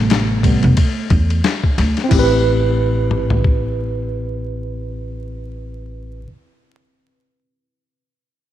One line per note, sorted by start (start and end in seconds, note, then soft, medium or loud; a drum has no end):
0.00 0.59 A1 loud
0.00 0.43 C3 soft
0.00 0.44 G3 soft
0.00 1.40 A3 medium
0.00 0.44 B3 medium
0.00 1.38 A4 medium
0.10 snare loud
0.10 hi-hat pedal soft
0.10 ride medium
0.43 0.74 C3 soft
0.43 0.74 G3 soft
0.43 0.74 B3 soft
0.43 kick medium
0.43 ride medium
0.63 0.76 E1 loud
0.63 ride soft
0.77 kick medium
0.77 ride medium
1.10 1.40 E2 medium
1.10 kick medium
1.10 ride soft
1.30 ride soft
1.44 snare medium
1.44 hi-hat pedal soft
1.44 ride medium
1.64 kick medium
1.78 1.94 D2 medium
1.78 snare soft
1.78 ride medium
1.97 snare soft
1.97 ride soft
2.04 6.20 C4 medium
2.09 6.23 A1 medium
2.09 6.22 E4 medium
2.09 kick loud
2.09 crash medium
2.14 6.25 G4 medium
2.19 6.27 B4 medium
3.11 mid tom medium
3.30 floor tom medium
3.44 kick medium